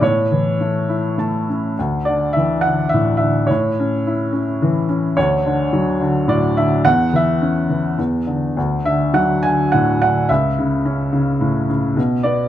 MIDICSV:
0, 0, Header, 1, 2, 480
1, 0, Start_track
1, 0, Tempo, 581959
1, 16, Time_signature, 3, 2, 24, 8
1, 2417, Tempo, 561272
1, 6257, Tempo, 576923
1, 8657, Tempo, 556586
1, 10535, End_track
2, 0, Start_track
2, 0, Title_t, "Felt piano"
2, 0, Program_c, 0, 0
2, 0, Control_c, 0, 64, 127
2, 9, Note_on_c, 0, 45, 53
2, 23, Note_on_c, 0, 73, 70
2, 26, Control_c, 0, 64, 0
2, 187, Control_c, 0, 64, 127
2, 264, Note_on_c, 0, 52, 37
2, 500, Note_on_c, 0, 57, 36
2, 735, Note_on_c, 0, 64, 43
2, 952, Note_off_c, 0, 73, 0
2, 960, Note_off_c, 0, 57, 0
2, 973, Note_on_c, 0, 57, 36
2, 980, Note_on_c, 0, 81, 48
2, 1207, Note_off_c, 0, 52, 0
2, 1233, Note_on_c, 0, 61, 31
2, 1434, Note_off_c, 0, 45, 0
2, 1437, Note_off_c, 0, 81, 0
2, 1450, Note_off_c, 0, 64, 0
2, 1451, Note_off_c, 0, 57, 0
2, 1465, Note_off_c, 0, 61, 0
2, 1476, Note_on_c, 0, 38, 48
2, 1480, Control_c, 0, 64, 0
2, 1630, Control_c, 0, 64, 127
2, 1692, Note_on_c, 0, 74, 67
2, 1712, Note_on_c, 0, 50, 40
2, 1921, Note_on_c, 0, 76, 70
2, 1945, Note_off_c, 0, 74, 0
2, 1951, Note_on_c, 0, 52, 39
2, 2155, Note_on_c, 0, 78, 73
2, 2176, Note_off_c, 0, 50, 0
2, 2178, Note_off_c, 0, 76, 0
2, 2188, Note_on_c, 0, 50, 45
2, 2385, Note_on_c, 0, 76, 69
2, 2411, Note_off_c, 0, 78, 0
2, 2423, Note_on_c, 0, 45, 42
2, 2610, Note_off_c, 0, 76, 0
2, 2623, Note_on_c, 0, 76, 61
2, 2645, Note_off_c, 0, 50, 0
2, 2657, Note_on_c, 0, 50, 39
2, 2871, Note_off_c, 0, 38, 0
2, 2876, Note_off_c, 0, 52, 0
2, 2876, Note_on_c, 0, 73, 60
2, 2891, Note_off_c, 0, 45, 0
2, 2892, Note_off_c, 0, 76, 0
2, 2895, Note_off_c, 0, 50, 0
2, 2909, Note_on_c, 0, 45, 54
2, 2913, Control_c, 0, 64, 0
2, 3065, Control_c, 0, 64, 127
2, 3159, Note_on_c, 0, 61, 41
2, 3391, Note_on_c, 0, 64, 45
2, 3596, Note_off_c, 0, 61, 0
2, 3609, Note_on_c, 0, 61, 43
2, 3864, Note_on_c, 0, 52, 49
2, 4055, Note_off_c, 0, 73, 0
2, 4079, Note_off_c, 0, 61, 0
2, 4092, Note_on_c, 0, 61, 46
2, 4311, Note_off_c, 0, 45, 0
2, 4317, Note_off_c, 0, 64, 0
2, 4329, Note_off_c, 0, 52, 0
2, 4330, Note_off_c, 0, 61, 0
2, 4330, Note_on_c, 0, 73, 74
2, 4336, Note_on_c, 0, 38, 56
2, 4354, Control_c, 0, 64, 0
2, 4482, Control_c, 0, 64, 127
2, 4581, Note_on_c, 0, 50, 50
2, 4810, Note_on_c, 0, 54, 47
2, 5037, Note_off_c, 0, 50, 0
2, 5050, Note_on_c, 0, 50, 51
2, 5256, Note_off_c, 0, 73, 0
2, 5280, Note_on_c, 0, 45, 53
2, 5290, Note_on_c, 0, 74, 70
2, 5521, Note_off_c, 0, 50, 0
2, 5531, Note_on_c, 0, 76, 70
2, 5534, Note_on_c, 0, 50, 45
2, 5540, Note_off_c, 0, 74, 0
2, 5739, Note_off_c, 0, 38, 0
2, 5742, Note_off_c, 0, 54, 0
2, 5753, Note_off_c, 0, 45, 0
2, 5766, Note_on_c, 0, 78, 87
2, 5767, Note_on_c, 0, 40, 59
2, 5768, Note_off_c, 0, 50, 0
2, 5781, Note_off_c, 0, 76, 0
2, 5787, Control_c, 0, 64, 0
2, 5940, Control_c, 0, 64, 127
2, 6009, Note_on_c, 0, 52, 44
2, 6019, Note_off_c, 0, 78, 0
2, 6033, Note_on_c, 0, 76, 71
2, 6254, Note_on_c, 0, 61, 42
2, 6474, Note_off_c, 0, 52, 0
2, 6487, Note_on_c, 0, 52, 42
2, 6698, Note_off_c, 0, 40, 0
2, 6705, Note_off_c, 0, 76, 0
2, 6715, Note_off_c, 0, 61, 0
2, 6721, Note_off_c, 0, 52, 0
2, 6724, Note_on_c, 0, 40, 46
2, 6742, Control_c, 0, 64, 0
2, 6896, Control_c, 0, 64, 127
2, 6964, Note_on_c, 0, 50, 37
2, 7199, Note_off_c, 0, 40, 0
2, 7205, Note_off_c, 0, 50, 0
2, 7212, Note_on_c, 0, 38, 54
2, 7228, Control_c, 0, 64, 0
2, 7381, Control_c, 0, 64, 127
2, 7447, Note_on_c, 0, 50, 42
2, 7450, Note_on_c, 0, 76, 68
2, 7683, Note_on_c, 0, 54, 43
2, 7688, Note_on_c, 0, 78, 75
2, 7708, Note_off_c, 0, 76, 0
2, 7926, Note_on_c, 0, 80, 82
2, 7933, Note_off_c, 0, 50, 0
2, 7945, Note_on_c, 0, 50, 46
2, 7947, Note_off_c, 0, 78, 0
2, 8169, Note_on_c, 0, 78, 74
2, 8183, Note_off_c, 0, 80, 0
2, 8188, Note_on_c, 0, 45, 49
2, 8404, Note_off_c, 0, 78, 0
2, 8413, Note_off_c, 0, 50, 0
2, 8417, Note_on_c, 0, 78, 75
2, 8426, Note_on_c, 0, 50, 40
2, 8616, Note_off_c, 0, 54, 0
2, 8621, Note_off_c, 0, 38, 0
2, 8637, Note_off_c, 0, 78, 0
2, 8643, Note_off_c, 0, 45, 0
2, 8644, Note_on_c, 0, 76, 72
2, 8651, Note_off_c, 0, 50, 0
2, 8657, Note_on_c, 0, 37, 54
2, 8665, Control_c, 0, 64, 0
2, 8801, Control_c, 0, 64, 127
2, 8900, Note_on_c, 0, 49, 51
2, 9131, Note_on_c, 0, 61, 49
2, 9353, Note_off_c, 0, 49, 0
2, 9366, Note_on_c, 0, 49, 56
2, 9609, Note_on_c, 0, 45, 50
2, 9819, Note_off_c, 0, 76, 0
2, 9844, Note_off_c, 0, 49, 0
2, 9857, Note_on_c, 0, 49, 51
2, 10066, Note_off_c, 0, 37, 0
2, 10067, Note_off_c, 0, 61, 0
2, 10080, Note_off_c, 0, 45, 0
2, 10091, Note_off_c, 0, 49, 0
2, 10091, Note_on_c, 0, 47, 64
2, 10109, Control_c, 0, 64, 0
2, 10237, Control_c, 0, 64, 127
2, 10320, Note_on_c, 0, 74, 73
2, 10333, Note_on_c, 0, 59, 54
2, 10535, Note_off_c, 0, 47, 0
2, 10535, Note_off_c, 0, 59, 0
2, 10535, Note_off_c, 0, 74, 0
2, 10535, End_track
0, 0, End_of_file